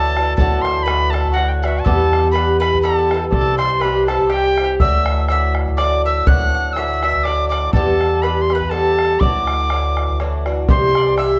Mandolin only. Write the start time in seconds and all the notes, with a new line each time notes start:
Already playing: A4
0.37 A4
0.65 C5
0.86 B4
1.13 A4
1.34 F#4
1.68 F#4
1.85 A4
2.33 B4
2.60 B4
2.84 A4
2.99 A4
3.15 A4
3.33 A4
3.58 C5
3.80 B4
4.09 A4
4.29 G4
4.47 G4
4.64 G4
4.80 E5
5.32 E5
5.78 D5
6.06 E5
6.27 F#5
6.54 F#5
6.77 E5
7.03 E5
7.25 D5
7.51 D5
7.73 A4
8.23 B4
8.55 B4
8.71 A4
9.21 D5
10.70 C5
10.97 D5
11.19 E5